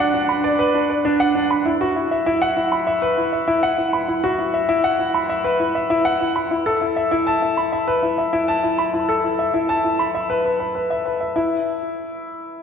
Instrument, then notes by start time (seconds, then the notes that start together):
grand piano
Already playing: D4 F#4 B4 D5 B5
0.00 F#5
0.14 D4
0.29 B5
0.44 D5
0.59 B4
0.74 D4
0.90 D5
1.05 D4
1.20 F#5
1.35 D4
1.51 B5
1.66 E4
1.81 F#4
1.96 E4
2.11 E5
2.26 E4
2.42 F#5
2.57 E4
2.72 B5
2.87 E5
3.02 B4
3.17 E4
3.33 E5
3.48 E4
3.63 F#5
3.78 E4
3.93 B5
4.08 E4
4.24 F#4
4.39 E4
4.54 E5
4.69 E4
4.84 F#5
4.99 E4
5.14 B5
5.29 E5
5.44 B4
5.60 E4
5.75 E5
5.90 E4
6.05 F#5
6.20 E4
6.36 B5
6.51 E4
6.66 A4
6.81 E4
6.96 E5
7.11 E4
7.27 A5
7.42 E4
7.57 B5
7.72 E5
7.87 B4
8.03 E4
8.18 E5
8.33 E4
8.48 A5
8.63 E4
8.78 B5
8.93 E4
9.09 A4
9.24 E4
9.39 E5
9.54 E4
9.69 A5
9.84 E4
9.99 B5
10.15 E5
10.30 B4
10.45 B4
10.60 B4
10.75 B4
10.90 E5
11.06 B4
11.21 E5
11.36 E4